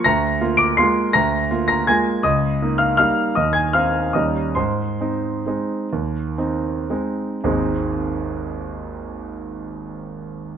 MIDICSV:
0, 0, Header, 1, 2, 480
1, 0, Start_track
1, 0, Key_signature, -4, "major"
1, 0, Tempo, 361664
1, 72, Time_signature, 3, 2, 24, 8
1, 1996, Tempo, 372671
1, 4876, Tempo, 414079
1, 6316, Tempo, 465477
1, 7756, Tempo, 531444
1, 11545, End_track
2, 0, Start_track
2, 0, Title_t, "Grand piano"
2, 0, Program_c, 0, 0
2, 59, Note_on_c, 0, 94, 87
2, 78, Note_on_c, 0, 82, 72
2, 79, Note_on_c, 0, 38, 59
2, 296, Control_c, 0, 64, 127
2, 530, Note_off_c, 0, 38, 0
2, 543, Note_on_c, 0, 58, 41
2, 549, Note_on_c, 0, 65, 45
2, 740, Note_off_c, 0, 82, 0
2, 759, Note_on_c, 0, 98, 83
2, 774, Note_on_c, 0, 86, 62
2, 781, Note_off_c, 0, 94, 0
2, 991, Note_off_c, 0, 58, 0
2, 994, Note_off_c, 0, 65, 0
2, 1015, Note_off_c, 0, 86, 0
2, 1024, Note_on_c, 0, 96, 88
2, 1025, Note_off_c, 0, 98, 0
2, 1032, Note_on_c, 0, 84, 66
2, 1049, Note_on_c, 0, 56, 40
2, 1049, Note_on_c, 0, 58, 41
2, 1051, Control_c, 0, 64, 0
2, 1059, Note_on_c, 0, 65, 46
2, 1476, Note_off_c, 0, 56, 0
2, 1476, Note_off_c, 0, 58, 0
2, 1482, Note_off_c, 0, 65, 0
2, 1482, Note_off_c, 0, 84, 0
2, 1504, Note_on_c, 0, 94, 92
2, 1511, Note_off_c, 0, 96, 0
2, 1515, Note_on_c, 0, 82, 65
2, 1530, Note_on_c, 0, 38, 56
2, 1758, Control_c, 0, 64, 127
2, 1988, Note_off_c, 0, 38, 0
2, 2003, Note_on_c, 0, 65, 44
2, 2005, Note_on_c, 0, 58, 37
2, 2184, Note_off_c, 0, 82, 0
2, 2200, Note_off_c, 0, 94, 0
2, 2220, Note_on_c, 0, 94, 74
2, 2236, Note_on_c, 0, 82, 54
2, 2429, Note_off_c, 0, 65, 0
2, 2431, Note_off_c, 0, 58, 0
2, 2458, Note_off_c, 0, 82, 0
2, 2466, Note_off_c, 0, 94, 0
2, 2472, Note_on_c, 0, 92, 75
2, 2483, Note_on_c, 0, 80, 55
2, 2484, Control_c, 0, 64, 0
2, 2485, Note_on_c, 0, 56, 38
2, 2491, Note_on_c, 0, 58, 39
2, 2509, Note_on_c, 0, 65, 44
2, 2701, Note_off_c, 0, 80, 0
2, 2712, Note_off_c, 0, 92, 0
2, 2907, Note_off_c, 0, 56, 0
2, 2910, Note_off_c, 0, 58, 0
2, 2920, Note_off_c, 0, 65, 0
2, 2935, Note_on_c, 0, 87, 73
2, 2945, Note_on_c, 0, 75, 57
2, 2947, Note_on_c, 0, 37, 52
2, 3195, Control_c, 0, 64, 127
2, 3407, Note_off_c, 0, 37, 0
2, 3437, Note_on_c, 0, 58, 38
2, 3438, Note_on_c, 0, 63, 37
2, 3613, Note_off_c, 0, 75, 0
2, 3641, Note_on_c, 0, 89, 68
2, 3650, Note_on_c, 0, 77, 49
2, 3658, Note_off_c, 0, 87, 0
2, 3869, Note_off_c, 0, 89, 0
2, 3872, Note_off_c, 0, 58, 0
2, 3872, Note_off_c, 0, 63, 0
2, 3887, Note_off_c, 0, 77, 0
2, 3889, Note_on_c, 0, 89, 77
2, 3906, Note_on_c, 0, 77, 55
2, 3910, Note_on_c, 0, 55, 32
2, 3913, Note_on_c, 0, 58, 34
2, 3915, Note_on_c, 0, 63, 35
2, 3932, Control_c, 0, 64, 0
2, 4348, Note_off_c, 0, 55, 0
2, 4350, Note_off_c, 0, 58, 0
2, 4351, Note_off_c, 0, 63, 0
2, 4360, Note_off_c, 0, 77, 0
2, 4378, Note_on_c, 0, 87, 61
2, 4386, Note_off_c, 0, 89, 0
2, 4388, Note_on_c, 0, 75, 47
2, 4400, Note_on_c, 0, 39, 42
2, 4604, Note_on_c, 0, 92, 61
2, 4612, Note_off_c, 0, 75, 0
2, 4624, Note_off_c, 0, 87, 0
2, 4626, Note_on_c, 0, 80, 47
2, 4632, Control_c, 0, 64, 127
2, 4855, Note_off_c, 0, 80, 0
2, 4861, Note_off_c, 0, 92, 0
2, 4862, Note_off_c, 0, 39, 0
2, 4869, Note_on_c, 0, 89, 67
2, 4881, Note_on_c, 0, 77, 52
2, 4886, Note_on_c, 0, 60, 30
2, 4896, Note_on_c, 0, 63, 35
2, 5295, Note_off_c, 0, 60, 0
2, 5301, Note_off_c, 0, 63, 0
2, 5306, Note_off_c, 0, 77, 0
2, 5331, Note_on_c, 0, 87, 49
2, 5332, Note_off_c, 0, 89, 0
2, 5343, Note_on_c, 0, 75, 40
2, 5346, Control_c, 0, 64, 0
2, 5353, Note_on_c, 0, 39, 41
2, 5354, Note_on_c, 0, 55, 30
2, 5354, Note_on_c, 0, 63, 32
2, 5357, Note_on_c, 0, 61, 30
2, 5558, Control_c, 0, 64, 127
2, 5775, Note_off_c, 0, 55, 0
2, 5775, Note_off_c, 0, 63, 0
2, 5777, Note_off_c, 0, 61, 0
2, 5783, Note_off_c, 0, 75, 0
2, 5807, Note_off_c, 0, 39, 0
2, 5810, Note_off_c, 0, 87, 0
2, 5814, Note_on_c, 0, 84, 56
2, 5829, Note_on_c, 0, 72, 42
2, 5831, Control_c, 0, 64, 0
2, 5835, Note_on_c, 0, 44, 43
2, 6102, Control_c, 0, 64, 127
2, 6312, Note_off_c, 0, 44, 0
2, 6343, Note_on_c, 0, 60, 28
2, 6349, Note_on_c, 0, 63, 29
2, 6771, Note_off_c, 0, 60, 0
2, 6774, Note_off_c, 0, 63, 0
2, 6809, Control_c, 0, 64, 0
2, 6813, Note_on_c, 0, 56, 27
2, 6818, Note_on_c, 0, 60, 27
2, 6827, Note_on_c, 0, 63, 30
2, 7244, Note_off_c, 0, 56, 0
2, 7247, Note_off_c, 0, 60, 0
2, 7251, Note_off_c, 0, 63, 0
2, 7290, Note_on_c, 0, 39, 37
2, 7509, Control_c, 0, 64, 127
2, 7746, Note_off_c, 0, 39, 0
2, 7759, Note_on_c, 0, 60, 27
2, 7766, Note_on_c, 0, 63, 30
2, 8191, Note_off_c, 0, 60, 0
2, 8194, Note_off_c, 0, 63, 0
2, 8195, Note_off_c, 0, 72, 0
2, 8225, Note_off_c, 0, 84, 0
2, 8227, Note_on_c, 0, 56, 29
2, 8230, Note_on_c, 0, 60, 28
2, 8232, Note_on_c, 0, 63, 31
2, 8237, Control_c, 0, 64, 0
2, 8677, Note_off_c, 0, 56, 0
2, 8679, Note_off_c, 0, 60, 0
2, 8680, Note_off_c, 0, 63, 0
2, 8712, Note_on_c, 0, 32, 45
2, 8717, Note_on_c, 0, 39, 38
2, 8720, Note_on_c, 0, 63, 41
2, 8721, Note_on_c, 0, 56, 38
2, 8724, Note_on_c, 0, 60, 37
2, 8724, Note_on_c, 0, 68, 37
2, 8971, Control_c, 0, 64, 127
2, 11503, Note_off_c, 0, 32, 0
2, 11508, Note_off_c, 0, 39, 0
2, 11512, Note_off_c, 0, 56, 0
2, 11512, Note_off_c, 0, 63, 0
2, 11515, Note_off_c, 0, 68, 0
2, 11516, Note_off_c, 0, 60, 0
2, 11545, End_track
0, 0, End_of_file